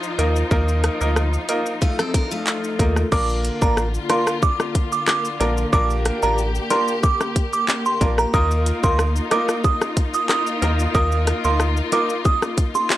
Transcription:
Already playing: F3 D#4 F4
0.03 shaker
0.18 D#2 A#3 D#4 F4 A#4, closed hi-hat, shaker
0.36 shaker
0.51 D#2 A#3 D#4 F4 A#4, kick, shaker
0.68 shaker
0.84 cross-stick, closed hi-hat, shaker
1.01 D2 A#3 D#4 F4 A#4, shaker
1.16 cross-stick, shaker
1.33 shaker
1.49 A#3 D#4 F4 A#4, closed hi-hat, shaker
1.66 shaker
1.82 A3 F4, kick, shaker
1.99 C4 A4, cross-stick, shaker
2.14 D4 A#4, kick, closed hi-hat, shaker
2.31 A3 F4, shaker
2.47 clap, shaker
2.64 shaker
2.79 D#2 A#3 D#4 F4 A#4, kick, closed hi-hat, shaker
2.96 cross-stick, shaker
3.12 A#1 D3 A#3 D4 F4 A#4 D6, kick, crash, shaker
3.29 shaker
3.45 closed hi-hat, shaker
3.62 A1 A#3 D4 F4 A#4 A#5, kick, shaker
3.77 cross-stick, shaker
3.94 shaker
4.10 A#3 D4 F4 A#4 C6, cross-stick, closed hi-hat, low bongo, shaker
4.27 cross-stick, shaker
4.42 D6, kick, high bongo, shaker
4.60 cross-stick, high bongo, shaker
4.75 kick, closed hi-hat, shaker
4.92 D6, shaker
5.08 D6, cross-stick, clap, high bongo, shaker
5.25 shaker
5.40 A#1 A#3 D4 F4 A#4, closed hi-hat, high bongo, low bongo, shaker
5.58 shaker
5.73 A#1 A#3 D4 F4 G4 A#4 D6, kick, shaker
5.90 shaker
6.05 cross-stick, closed hi-hat, shaker
6.23 A1 A#3 D4 F4 A#4 A#5, shaker
6.38 shaker
6.55 shaker
6.70 A#3 D4 F4 A#4 C6, closed hi-hat, low bongo, shaker
6.88 shaker
7.03 D6, kick, high bongo, shaker
7.21 cross-stick, high bongo, shaker
7.36 kick, closed hi-hat, shaker
7.53 D6, shaker
7.68 clap, high bongo, shaker
7.86 C6, shaker
8.01 A#1 A#3 D4 F4 A#4, kick, closed hi-hat, high bongo, low bongo, shaker
8.18 A#5, cross-stick, shaker
8.34 D#2 A#3 D#4 F4 A#4 D#6, kick, shaker
8.51 shaker
8.66 closed hi-hat, shaker
8.83 D2 A#3 D#4 F4 A#4 C6, kick, shaker
8.99 cross-stick, shaker
9.16 shaker
9.31 A#3 D#4 F4 A#4 D6, cross-stick, closed hi-hat, low bongo, shaker
9.49 cross-stick, shaker
9.64 D#6, kick, high bongo, shaker
9.81 cross-stick, high bongo, shaker
9.97 kick, closed hi-hat, shaker
10.14 D#6, shaker
10.29 D#6, cross-stick, clap, high bongo, shaker
10.47 shaker
10.62 D#2 A#3 D#4 F4 A#4, closed hi-hat, high bongo, low bongo, shaker
10.79 shaker
10.94 D#2 A#3 D#4 F4 A#4 D#6, kick, shaker
11.12 shaker
11.27 cross-stick, closed hi-hat, shaker
11.44 D2 A#3 D#4 F4 A#4 C6, shaker
11.60 cross-stick, shaker
11.77 shaker
11.92 A#3 D#4 F4 A#4 D6, closed hi-hat, high bongo, low bongo, shaker
12.10 shaker
12.25 D#6, kick, high bongo, shaker
12.42 cross-stick, high bongo, shaker
12.58 kick, closed hi-hat, shaker
12.75 C6, high bongo, shaker
12.90 clap, high bongo, shaker

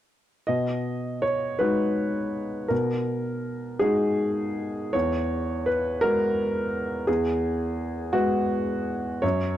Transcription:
0.47 B2 D#5
1.22 C#5
1.59 G#3 D#4 F#4 B4
2.68 B2 A#4
3.79 G#3 D#4 F#4 G#4
4.93 E2 C#5
5.66 B4
6.01 G#3 B3 F#4 A#4
7.07 E2 G#4
8.13 G#3 B3 F#4
9.22 F#2 C#5

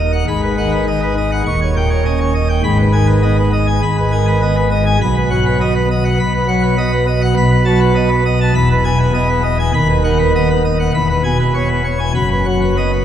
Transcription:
Already playing: D#1 D#2 D#5
0.13 F#5
0.27 G#1 G#2 B5
0.42 B4
0.57 D#3 F#5
0.72 B4
0.87 D#4 D#5
1.02 B4
1.17 D#5
1.32 F#5
1.46 D#1 D#2 C#6
1.61 C#5
1.76 A#2 G5
1.90 C#5
2.05 C#4 D#5
2.20 C#5
2.34 D#5
2.49 G5
2.63 G#1 G#2 B5
2.79 B4
2.93 D#3 G#5
3.07 B4
3.22 B3 D#5
3.37 B4
3.53 D#5
3.67 G#5
3.82 G#1 G#2 B5
3.98 B4
4.12 D#3 G#5
4.27 B4
4.42 B3 D#5
4.56 B4
4.71 D#5
4.86 G#5
5.01 B1 B2 B5
5.16 B4
5.30 F#3 F#5
5.46 B4
5.61 B3 D#5
5.75 B4
5.90 D#5
6.05 F#5
6.19 B1 B2 B5
6.34 B4
6.48 F#3 F#5
6.63 B4
6.78 B3 D#5
6.92 B4
7.07 D#5
7.22 F#5
7.37 B1 B2 B5
7.51 B4
7.65 F#3 A5
7.80 B4
7.95 B3 D#5
8.09 B4
8.25 D#5
8.41 A5
8.55 E1 E2 B5
8.71 B4
8.85 B2 G#5
8.99 B4
9.14 B3 D#5
9.29 B4
9.43 D#5
9.59 G#5
9.74 D#1 D#2 B5
9.89 B4
10.04 D#3 F#5
10.19 B4
10.35 B3 D#5
10.50 B4
10.64 D#5
10.80 F#5
10.94 E1 E2 B5
11.10 B4
11.24 B2 G#5
11.39 B4
11.54 B3 C#5
11.69 B4
11.84 C#5
11.99 G#5
12.15 F#1 F#2 B5
12.31 B4
12.46 F#3 F#5
12.61 B4
12.77 B3 D#5
12.93 B4

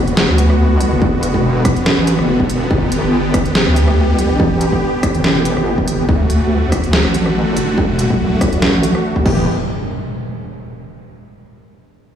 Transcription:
Already playing: F#1 D3 B3 F#4
0.07 closed hi-hat
0.17 snare
0.29 D2, cross-stick
0.38 closed hi-hat
0.50 cross-stick
0.73 C#2
0.81 closed hi-hat
0.92 F#1
1.02 kick
1.23 closed hi-hat
1.34 E1, kick
1.65 kick, cross-stick, closed hi-hat
1.76 closed hi-hat
1.86 snare
1.98 A1
2.07 closed hi-hat
2.19 F#1, cross-stick
2.40 F#1, kick
2.50 E1, closed hi-hat
2.71 G1 G4, kick
2.92 closed hi-hat
3.03 G1
3.34 kick, cross-stick, closed hi-hat
3.46 closed hi-hat
3.55 snare
3.67 D2, cross-stick
3.76 closed hi-hat
3.88 cross-stick
4.11 C#2
4.19 closed hi-hat
4.30 A1
4.40 kick
4.61 closed hi-hat
4.72 kick
5.03 kick, cross-stick, closed hi-hat
5.15 G1, closed hi-hat
5.24 snare
5.45 closed hi-hat
5.57 G1, cross-stick
5.78 kick
5.88 G1, closed hi-hat
6.09 D2 D3 A3 F#4, kick
6.30 closed hi-hat
6.41 D2
6.72 kick, cross-stick, closed hi-hat
6.84 closed hi-hat
6.93 snare
7.05 A1, cross-stick
7.14 closed hi-hat
7.26 cross-stick
7.57 closed hi-hat
7.68 E1
7.78 kick
7.99 closed hi-hat
8.10 C2, kick
8.41 kick, cross-stick, closed hi-hat
8.53 closed hi-hat
8.62 snare
8.74 A1
8.83 closed hi-hat
8.95 cross-stick
9.16 D2, kick
9.26 E1 E3 B3 G4, kick, crash, impact

